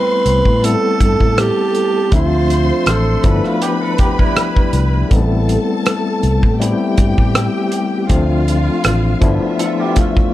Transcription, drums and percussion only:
0.26 closed hi-hat medium
0.45 kick medium
0.64 closed hi-hat medium
1.00 kick medium
1.00 closed hi-hat medium
1.20 kick medium
1.38 cross-stick medium
1.38 closed hi-hat medium
1.75 closed hi-hat soft
2.12 kick loud
2.12 closed hi-hat medium
2.50 closed hi-hat medium
2.86 cross-stick medium
2.86 closed hi-hat medium
3.24 kick medium
3.24 closed hi-hat medium
3.44 cross-stick soft
3.62 closed hi-hat medium
3.98 kick medium
3.98 closed hi-hat medium
4.19 kick medium
4.36 cross-stick loud
4.36 closed hi-hat medium
4.56 kick medium
4.73 closed hi-hat medium
5.11 kick loud
5.11 closed hi-hat medium
5.49 closed hi-hat medium
5.86 cross-stick loud
5.86 closed hi-hat medium
6.23 closed hi-hat soft
6.43 kick medium
6.62 closed hi-hat medium
6.98 kick medium
6.98 closed hi-hat medium
7.18 kick medium
7.35 cross-stick medium
7.35 closed hi-hat medium
7.72 closed hi-hat medium
8.09 kick medium
8.09 closed hi-hat medium
8.48 closed hi-hat medium
8.84 cross-stick medium
8.84 closed hi-hat medium
9.22 kick medium
9.22 closed hi-hat medium
9.59 closed hi-hat medium
9.96 kick medium
9.96 closed hi-hat medium
10.17 kick medium

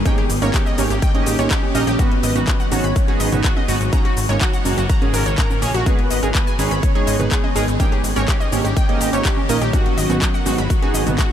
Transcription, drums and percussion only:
0.05 kick loud
0.05 closed hi-hat medium
0.05 high conga loud
0.05 shaker soft
0.18 closed hi-hat soft
0.30 open hi-hat loud
0.30 shaker medium
0.42 closed hi-hat medium
0.42 high conga medium
0.42 shaker soft
0.54 kick loud
0.54 clap loud
0.54 closed hi-hat medium
0.54 shaker soft
0.66 shaker soft
0.78 open hi-hat loud
0.78 high conga loud
0.78 shaker medium
0.90 closed hi-hat medium
0.90 shaker soft
1.02 kick loud
1.02 closed hi-hat medium
1.02 shaker soft
1.15 closed hi-hat soft
1.15 high conga medium
1.26 open hi-hat loud
1.26 shaker medium
1.39 closed hi-hat medium
1.39 shaker soft
1.51 kick loud
1.51 clap loud
1.51 closed hi-hat medium
1.51 shaker soft
1.63 high conga loud
1.75 open hi-hat loud
1.75 shaker medium
1.87 closed hi-hat medium
1.87 shaker soft
1.99 kick loud
1.99 closed hi-hat medium
1.99 high conga medium
1.99 shaker soft
2.11 closed hi-hat soft
2.23 open hi-hat loud
2.23 shaker medium
2.36 closed hi-hat soft
2.36 high conga medium
2.36 shaker soft
2.47 kick loud
2.47 clap loud
2.47 closed hi-hat medium
2.47 shaker soft
2.60 shaker soft
2.72 open hi-hat loud
2.72 high conga loud
2.72 shaker medium
2.84 closed hi-hat soft
2.84 shaker soft
2.96 kick loud
2.96 closed hi-hat medium
2.96 shaker soft
3.08 closed hi-hat soft
3.08 high conga medium
3.20 open hi-hat loud
3.20 shaker medium
3.32 closed hi-hat medium
3.32 mid tom medium
3.32 shaker soft
3.44 kick loud
3.44 clap loud
3.44 closed hi-hat medium
3.44 shaker soft
3.57 high conga loud
3.68 open hi-hat loud
3.68 shaker medium
3.81 closed hi-hat soft
3.81 shaker soft
3.93 kick loud
3.93 closed hi-hat medium
3.93 high conga medium
3.93 shaker soft
4.05 closed hi-hat soft
4.17 open hi-hat loud
4.17 shaker medium
4.29 closed hi-hat soft
4.29 high conga medium
4.29 shaker soft
4.41 kick loud
4.41 clap loud
4.41 closed hi-hat medium
4.41 shaker soft
4.53 closed hi-hat soft
4.53 shaker soft
4.65 open hi-hat loud
4.65 high conga medium
4.65 shaker medium
4.78 closed hi-hat soft
4.78 shaker soft
4.90 kick loud
4.90 closed hi-hat medium
4.90 shaker soft
5.02 closed hi-hat soft
5.02 high conga medium
5.14 open hi-hat loud
5.14 shaker medium
5.26 closed hi-hat medium
5.26 shaker soft
5.38 kick loud
5.38 clap loud
5.38 closed hi-hat medium
5.38 shaker soft
5.50 high conga loud
5.50 shaker soft
5.62 open hi-hat loud
5.62 shaker medium
5.74 closed hi-hat medium
5.74 shaker soft
5.86 kick loud
5.86 closed hi-hat medium
5.86 high conga medium
5.86 shaker soft
5.99 closed hi-hat soft
6.11 open hi-hat loud
6.11 shaker medium
6.23 closed hi-hat soft
6.23 high conga medium
6.23 shaker soft
6.35 kick loud
6.35 clap loud
6.35 closed hi-hat medium
6.35 shaker soft
6.47 shaker soft
6.59 open hi-hat loud
6.59 high conga medium
6.59 shaker medium
6.71 closed hi-hat soft
6.71 shaker soft
6.83 kick loud
6.83 closed hi-hat medium
6.83 shaker soft
6.95 closed hi-hat soft
6.95 high conga medium
7.07 open hi-hat loud
7.07 shaker medium
7.20 closed hi-hat medium
7.20 mid tom medium
7.20 shaker soft
7.31 kick loud
7.31 clap loud
7.31 closed hi-hat medium
7.31 shaker soft
7.44 high conga medium
7.56 open hi-hat loud
7.56 shaker medium
7.68 closed hi-hat medium
7.68 shaker soft
7.80 kick loud
7.80 closed hi-hat medium
7.80 high conga medium
7.80 shaker soft
7.92 closed hi-hat soft
8.04 open hi-hat loud
8.04 shaker medium
8.16 closed hi-hat soft
8.16 high conga medium
8.16 shaker soft
8.28 kick loud
8.28 clap loud
8.28 closed hi-hat medium
8.28 shaker soft
8.41 shaker soft
8.52 open hi-hat loud
8.52 high conga medium
8.52 shaker medium
8.65 closed hi-hat medium
8.65 shaker soft
8.77 kick loud
8.77 closed hi-hat medium
8.77 shaker soft
8.89 closed hi-hat soft
8.89 high conga medium
9.01 open hi-hat loud
9.01 shaker medium
9.13 closed hi-hat medium
9.13 shaker soft
9.25 kick loud
9.25 clap loud
9.25 closed hi-hat medium
9.25 shaker soft
9.37 high conga medium
9.49 open hi-hat loud
9.49 shaker medium
9.62 closed hi-hat medium
9.62 shaker soft
9.73 kick loud
9.73 closed hi-hat medium
9.73 high conga medium
9.73 shaker soft
9.86 closed hi-hat soft
9.98 open hi-hat loud
9.98 shaker medium
10.10 closed hi-hat medium
10.10 high conga medium
10.10 shaker soft
10.22 kick loud
10.22 clap loud
10.22 closed hi-hat medium
10.22 shaker soft
10.34 shaker soft
10.46 open hi-hat loud
10.46 high conga medium
10.46 shaker medium
10.58 closed hi-hat medium
10.58 shaker soft
10.70 kick loud
10.70 closed hi-hat medium
10.70 shaker soft
10.82 closed hi-hat soft
10.82 high conga medium
10.94 open hi-hat loud
10.94 shaker medium
11.07 closed hi-hat medium
11.07 mid tom medium
11.07 shaker soft
11.19 kick loud
11.19 clap loud
11.19 closed hi-hat medium
11.19 shaker soft

